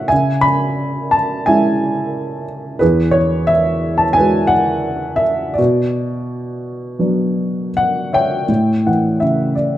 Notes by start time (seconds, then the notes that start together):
Already playing: A3 B3 C#4 E4 C#5 E5 F#5
0.08 E5 G#5
0.12 C#3
0.41 B5
1.11 A5
1.46 G#3 C#4 E4 E5 G#5
2.79 E2 G#4 B4
3.11 C#5
3.47 E5
3.98 A5
4.13 G#5
4.17 G#3 E4 F#4 B4
4.47 F#5
5.16 E5
5.54 D5
5.58 B2 F#4
6.99 F#3 B3 D4
7.77 F#5
8.13 C#5 E5 G5
8.48 A2
8.86 E3 F#5
9.20 C#3 E5
9.55 D5